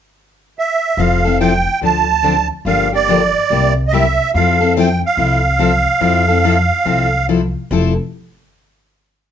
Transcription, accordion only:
0, 0, Header, 1, 2, 480
1, 0, Start_track
1, 0, Key_signature, -1, "major"
1, 0, Tempo, 419580
1, 1133, Time_signature, 4, 2, 24, 8
1, 10659, End_track
2, 0, Start_track
2, 0, Title_t, "Accordion"
2, 0, Program_c, 0, 21
2, 672, Note_on_c, 0, 76, 74
2, 1134, Note_on_c, 0, 77, 73
2, 1156, Note_off_c, 0, 76, 0
2, 1578, Note_off_c, 0, 77, 0
2, 1609, Note_on_c, 0, 79, 77
2, 2055, Note_off_c, 0, 79, 0
2, 2109, Note_on_c, 0, 81, 82
2, 2833, Note_off_c, 0, 81, 0
2, 3053, Note_on_c, 0, 77, 88
2, 3330, Note_off_c, 0, 77, 0
2, 3370, Note_on_c, 0, 74, 92
2, 4272, Note_off_c, 0, 74, 0
2, 4435, Note_on_c, 0, 75, 59
2, 4482, Note_on_c, 0, 76, 84
2, 4490, Note_off_c, 0, 75, 0
2, 4930, Note_off_c, 0, 76, 0
2, 4973, Note_on_c, 0, 77, 80
2, 5416, Note_off_c, 0, 77, 0
2, 5475, Note_on_c, 0, 79, 73
2, 5743, Note_off_c, 0, 79, 0
2, 5788, Note_on_c, 0, 77, 86
2, 8307, Note_off_c, 0, 77, 0
2, 10659, End_track
0, 0, End_of_file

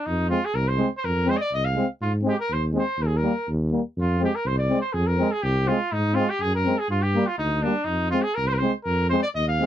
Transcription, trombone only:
0, 0, Header, 1, 2, 480
1, 0, Start_track
1, 0, Tempo, 490196
1, 53, Time_signature, 2, 2, 24, 8
1, 9459, End_track
2, 0, Start_track
2, 0, Title_t, "Trombone"
2, 0, Program_c, 0, 57
2, 295, Note_on_c, 0, 56, 55
2, 390, Note_off_c, 0, 56, 0
2, 763, Note_on_c, 0, 56, 65
2, 860, Note_off_c, 0, 56, 0
2, 1252, Note_on_c, 0, 56, 67
2, 1347, Note_off_c, 0, 56, 0
2, 1714, Note_on_c, 0, 56, 60
2, 1812, Note_off_c, 0, 56, 0
2, 2206, Note_on_c, 0, 56, 77
2, 2301, Note_off_c, 0, 56, 0
2, 2675, Note_on_c, 0, 56, 64
2, 2772, Note_off_c, 0, 56, 0
2, 3159, Note_on_c, 0, 55, 64
2, 3255, Note_off_c, 0, 55, 0
2, 3634, Note_on_c, 0, 55, 51
2, 3731, Note_off_c, 0, 55, 0
2, 4131, Note_on_c, 0, 56, 61
2, 4225, Note_off_c, 0, 56, 0
2, 4607, Note_on_c, 0, 56, 54
2, 4701, Note_off_c, 0, 56, 0
2, 5098, Note_on_c, 0, 56, 77
2, 5190, Note_off_c, 0, 56, 0
2, 5577, Note_on_c, 0, 56, 68
2, 5669, Note_off_c, 0, 56, 0
2, 6056, Note_on_c, 0, 56, 70
2, 6149, Note_off_c, 0, 56, 0
2, 6527, Note_on_c, 0, 56, 55
2, 6622, Note_off_c, 0, 56, 0
2, 7008, Note_on_c, 0, 55, 71
2, 7103, Note_off_c, 0, 55, 0
2, 7489, Note_on_c, 0, 55, 57
2, 7584, Note_off_c, 0, 55, 0
2, 7962, Note_on_c, 0, 56, 62
2, 8059, Note_off_c, 0, 56, 0
2, 8447, Note_on_c, 0, 56, 64
2, 8543, Note_off_c, 0, 56, 0
2, 8926, Note_on_c, 0, 56, 77
2, 9023, Note_off_c, 0, 56, 0
2, 9409, Note_on_c, 0, 56, 70
2, 9459, Note_off_c, 0, 56, 0
2, 9459, End_track
0, 0, End_of_file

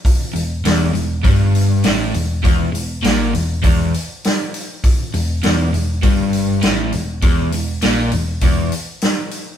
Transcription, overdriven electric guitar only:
0, 0, Header, 1, 2, 480
1, 0, Start_track
1, 0, Tempo, 597610
1, 45, Time_signature, 4, 2, 24, 8
1, 7691, End_track
2, 0, Start_track
2, 0, Title_t, "Overdriven electric guitar"
2, 0, Program_c, 0, 29
2, 270, Note_on_c, 0, 40, 59
2, 470, Note_off_c, 0, 40, 0
2, 524, Note_on_c, 0, 40, 84
2, 744, Note_off_c, 0, 40, 0
2, 753, Note_on_c, 0, 40, 61
2, 952, Note_off_c, 0, 40, 0
2, 991, Note_on_c, 0, 43, 76
2, 1473, Note_off_c, 0, 43, 0
2, 1480, Note_on_c, 0, 45, 81
2, 1717, Note_off_c, 0, 45, 0
2, 1719, Note_on_c, 0, 40, 60
2, 1916, Note_off_c, 0, 40, 0
2, 1953, Note_on_c, 0, 40, 81
2, 2175, Note_off_c, 0, 40, 0
2, 2185, Note_on_c, 0, 40, 66
2, 2389, Note_off_c, 0, 40, 0
2, 2430, Note_on_c, 0, 46, 85
2, 2672, Note_off_c, 0, 46, 0
2, 2678, Note_on_c, 0, 40, 63
2, 2876, Note_off_c, 0, 40, 0
2, 2913, Note_on_c, 0, 40, 88
2, 3154, Note_off_c, 0, 40, 0
2, 4127, Note_on_c, 0, 40, 63
2, 4320, Note_off_c, 0, 40, 0
2, 4363, Note_on_c, 0, 40, 90
2, 4594, Note_off_c, 0, 40, 0
2, 4604, Note_on_c, 0, 40, 62
2, 4799, Note_off_c, 0, 40, 0
2, 4839, Note_on_c, 0, 43, 79
2, 5314, Note_on_c, 0, 45, 75
2, 5317, Note_off_c, 0, 43, 0
2, 5555, Note_off_c, 0, 45, 0
2, 5560, Note_on_c, 0, 40, 60
2, 5757, Note_off_c, 0, 40, 0
2, 5805, Note_on_c, 0, 40, 85
2, 6040, Note_off_c, 0, 40, 0
2, 6056, Note_on_c, 0, 40, 63
2, 6245, Note_off_c, 0, 40, 0
2, 6288, Note_on_c, 0, 46, 92
2, 6521, Note_off_c, 0, 46, 0
2, 6522, Note_on_c, 0, 40, 58
2, 6717, Note_off_c, 0, 40, 0
2, 6771, Note_on_c, 0, 40, 84
2, 7003, Note_off_c, 0, 40, 0
2, 7691, End_track
0, 0, End_of_file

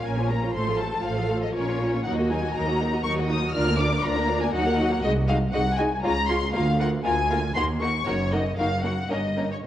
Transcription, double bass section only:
0, 0, Header, 1, 2, 480
1, 0, Start_track
1, 0, Tempo, 499168
1, 529, Time_signature, 3, 2, 24, 8
1, 5811, Tempo, 507185
1, 8211, Tempo, 535236
1, 9187, End_track
2, 0, Start_track
2, 0, Title_t, "Double bass section"
2, 0, Program_c, 0, 48
2, 50, Note_on_c, 0, 34, 55
2, 472, Note_off_c, 0, 34, 0
2, 529, Note_on_c, 0, 33, 65
2, 949, Note_off_c, 0, 33, 0
2, 1002, Note_on_c, 0, 33, 55
2, 1433, Note_off_c, 0, 33, 0
2, 1494, Note_on_c, 0, 34, 56
2, 1917, Note_off_c, 0, 34, 0
2, 1976, Note_on_c, 0, 39, 68
2, 2400, Note_off_c, 0, 39, 0
2, 2459, Note_on_c, 0, 39, 58
2, 2882, Note_off_c, 0, 39, 0
2, 2935, Note_on_c, 0, 39, 60
2, 3354, Note_off_c, 0, 39, 0
2, 3408, Note_on_c, 0, 38, 75
2, 3834, Note_off_c, 0, 38, 0
2, 3888, Note_on_c, 0, 38, 64
2, 4314, Note_off_c, 0, 38, 0
2, 4368, Note_on_c, 0, 39, 66
2, 4790, Note_off_c, 0, 39, 0
2, 4840, Note_on_c, 0, 36, 79
2, 5271, Note_off_c, 0, 36, 0
2, 5330, Note_on_c, 0, 36, 66
2, 5753, Note_off_c, 0, 36, 0
2, 5807, Note_on_c, 0, 37, 69
2, 6232, Note_off_c, 0, 37, 0
2, 6289, Note_on_c, 0, 38, 76
2, 6713, Note_off_c, 0, 38, 0
2, 6766, Note_on_c, 0, 38, 70
2, 7189, Note_off_c, 0, 38, 0
2, 7244, Note_on_c, 0, 39, 69
2, 7668, Note_off_c, 0, 39, 0
2, 7726, Note_on_c, 0, 30, 77
2, 8153, Note_off_c, 0, 30, 0
2, 8204, Note_on_c, 0, 30, 59
2, 8621, Note_off_c, 0, 30, 0
2, 8679, Note_on_c, 0, 31, 54
2, 9111, Note_off_c, 0, 31, 0
2, 9187, End_track
0, 0, End_of_file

